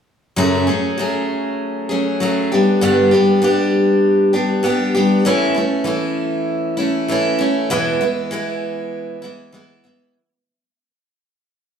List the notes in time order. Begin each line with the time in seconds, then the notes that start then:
0.36 F#2 C#3 F#3 A3 C#4 G#4
0.67 F#3 A3 C#4 G#4
0.98 F#3 A3 C#4 G#4
1.89 F#3 A3 C#4 G#4
2.20 F#3 A3 C#4 G#4
2.52 G3 B3 D4 G4
2.81 G2 D3 G3 B3 D4 G4
3.11 G3 B3 D4 G4
3.42 G3 B3 D4 G4
4.33 G3 B3 D4 G4
4.63 G3 B3 D4 G4
4.95 G3 B3 D4 G4
5.25 A2 E3 A3 C#4 E4
5.54 A3 C#4 E4
5.84 E3 A3 C#4 E4
6.77 A3 C#4 E4
7.08 E3 A3 C#4 E4
7.39 A3 C#4 E4
7.70 E2 B2 E3 G#3 B3 E4
8.01 E3 G#3 B3 E4
8.31 E3 G#3 B3 E4
9.22 E3 G#3 B3 E4
9.52 E3 G#3 B3 E4
9.84 E3 G#3 B3 E4